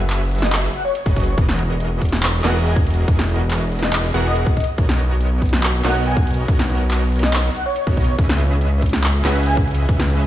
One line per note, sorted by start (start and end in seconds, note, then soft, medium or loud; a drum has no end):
0.00 0.69 F#1 loud
0.00 0.71 F#3 medium
0.00 0.71 F#4 medium
0.00 0.71 G#4 medium
0.00 0.71 B4 medium
0.00 0.71 E5 loud
0.10 clap medium
0.10 closed hi-hat medium
0.31 closed hi-hat soft
0.35 closed hi-hat medium
0.38 0.52 D#5 medium
0.38 snare medium
0.38 closed hi-hat medium
0.53 clap loud
0.53 closed hi-hat medium
0.74 0.83 F#5 medium
0.74 closed hi-hat medium
0.85 0.91 C#5 medium
0.95 1.02 C#5 medium
0.95 closed hi-hat medium
1.06 1.36 F#1 loud
1.06 1.24 F#3 medium
1.06 1.24 F#4 medium
1.06 1.24 G#4 medium
1.06 1.24 B4 medium
1.06 1.24 D#5 medium
1.06 kick loud
1.16 1.23 C#5 medium
1.16 kick medium
1.16 closed hi-hat soft
1.20 closed hi-hat medium
1.24 1.34 C#5 medium
1.24 closed hi-hat medium
1.38 2.42 E1 loud
1.38 2.42 E3 medium
1.38 2.42 B3 medium
1.38 2.42 F#4 medium
1.38 2.42 G#4 medium
1.38 2.42 A#4 medium
1.38 2.42 D#5 medium
1.38 kick loud
1.38 closed hi-hat medium
1.49 snare medium
1.59 closed hi-hat medium
1.80 closed hi-hat medium
2.02 kick medium
2.02 closed hi-hat soft
2.05 closed hi-hat medium
2.09 snare medium
2.09 closed hi-hat medium
2.23 clap loud
2.23 closed hi-hat medium
2.44 3.06 E1 loud
2.44 3.05 E3 medium
2.44 3.05 B3 medium
2.44 3.05 F#4 medium
2.44 3.05 G#4 medium
2.44 3.05 A#4 medium
2.44 3.05 D#5 medium
2.44 2.54 F#5 medium
2.44 clap medium
2.44 snare medium
2.44 closed hi-hat medium
2.65 2.75 G#5 medium
2.65 closed hi-hat medium
2.76 kick loud
2.87 closed hi-hat soft
2.90 closed hi-hat medium
2.94 closed hi-hat medium
3.08 4.12 E1 loud
3.08 4.12 E3 medium
3.08 4.12 B3 medium
3.08 4.12 F#4 medium
3.08 4.12 G#4 medium
3.08 4.12 A#4 medium
3.08 kick loud
3.08 closed hi-hat medium
3.19 snare medium
3.29 closed hi-hat medium
3.51 clap medium
3.51 closed hi-hat medium
3.72 closed hi-hat soft
3.75 closed hi-hat medium
3.79 3.92 D#5 medium
3.79 snare medium
3.79 closed hi-hat medium
3.93 clap loud
3.93 closed hi-hat medium
4.14 4.54 E1 medium
4.14 4.56 E3 medium
4.14 4.56 B3 medium
4.14 4.56 F#4 medium
4.14 4.56 G#4 medium
4.14 4.56 A#4 medium
4.14 4.56 F#5 loud
4.14 closed hi-hat medium
4.25 4.35 D#5 medium
4.35 closed hi-hat medium
4.46 4.53 D#5 medium
4.46 kick loud
4.57 4.64 D#5 medium
4.57 kick medium
4.57 closed hi-hat soft
4.60 closed hi-hat medium
4.64 closed hi-hat medium
4.78 5.83 B1 loud
4.78 5.82 B3 medium
4.78 5.82 F#4 medium
4.78 5.82 A#4 medium
4.78 5.82 C#5 medium
4.78 5.82 D#5 medium
4.78 kick loud
4.78 closed hi-hat medium
4.89 snare medium
4.99 closed hi-hat medium
5.21 closed hi-hat medium
5.42 kick medium
5.42 closed hi-hat soft
5.46 closed hi-hat medium
5.49 snare medium
5.49 closed hi-hat medium
5.63 clap loud
5.63 closed hi-hat medium
5.84 6.46 B1 loud
5.84 6.46 B3 medium
5.84 6.46 F#4 medium
5.84 6.46 A#4 medium
5.84 6.46 C#5 medium
5.84 6.46 D#5 medium
5.84 5.95 F#5 medium
5.84 clap medium
5.84 snare medium
5.84 closed hi-hat medium
6.06 6.16 G#5 medium
6.06 closed hi-hat medium
6.17 kick loud
6.27 closed hi-hat soft
6.31 closed hi-hat medium
6.34 closed hi-hat medium
6.48 7.50 B1 loud
6.48 7.52 B3 medium
6.48 7.52 F#4 medium
6.48 7.52 A#4 medium
6.48 7.52 C#5 medium
6.48 7.52 D#5 loud
6.48 kick loud
6.48 closed hi-hat medium
6.59 snare medium
6.70 closed hi-hat medium
6.91 clap medium
6.91 closed hi-hat medium
7.12 closed hi-hat soft
7.16 closed hi-hat medium
7.19 7.33 D#5 medium
7.19 snare medium
7.19 closed hi-hat medium
7.33 clap loud
7.33 closed hi-hat medium
7.55 7.64 F#5 medium
7.55 closed hi-hat medium
7.66 7.72 C#5 medium
7.76 7.83 C#5 medium
7.76 closed hi-hat medium
7.87 8.17 B1 loud
7.87 8.05 B3 medium
7.87 8.05 F#4 medium
7.87 8.05 A#4 medium
7.87 8.05 C#5 medium
7.87 8.05 D#5 loud
7.87 kick loud
7.97 8.04 C#5 medium
7.97 kick medium
7.97 closed hi-hat soft
8.01 closed hi-hat medium
8.04 8.15 C#5 medium
8.04 closed hi-hat medium
8.18 9.23 C#2 loud
8.18 9.22 C#4 medium
8.18 9.22 G#4 medium
8.18 9.22 B4 medium
8.18 9.22 D#5 medium
8.18 9.22 E5 medium
8.18 kick loud
8.18 closed hi-hat medium
8.29 snare medium
8.40 closed hi-hat medium
8.61 closed hi-hat medium
8.82 kick medium
8.82 closed hi-hat medium
8.86 closed hi-hat medium
8.89 snare medium
8.89 closed hi-hat medium
9.04 clap loud
9.04 closed hi-hat medium
9.25 9.87 C#2 medium
9.25 9.86 C#4 medium
9.25 9.86 G#4 medium
9.25 9.86 B4 medium
9.25 9.86 D#5 medium
9.25 9.86 E5 medium
9.25 9.35 F#5 medium
9.25 clap medium
9.25 snare medium
9.25 closed hi-hat medium
9.46 9.56 G#5 medium
9.46 closed hi-hat medium
9.57 kick loud
9.68 closed hi-hat medium
9.71 closed hi-hat medium
9.75 closed hi-hat medium
9.89 10.27 C#2 loud
9.89 10.27 C#4 medium
9.89 10.27 G#4 medium
9.89 10.27 B4 medium
9.89 kick loud
9.89 closed hi-hat medium
10.00 snare medium
10.10 closed hi-hat medium